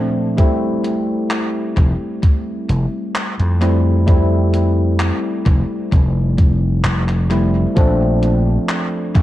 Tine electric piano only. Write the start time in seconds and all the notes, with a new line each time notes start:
Already playing: A#2 F3 A3 C4 D4
0.37 G3 A3 C4 E4
3.61 G3 A3 C4 E4
4.06 G3 A3 C4 E4
7.30 G3 A3 C4 E4
7.75 F3 A3 C4 D4